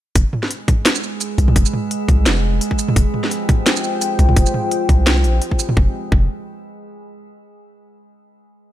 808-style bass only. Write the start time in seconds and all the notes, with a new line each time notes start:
0.15 F1
1.38 C2
1.56 F1
2.09 C2
2.26 F1
2.96 F1
4.19 C2
4.36 F1
4.89 C2
5.24 A#1
5.77 F1
6.12 F1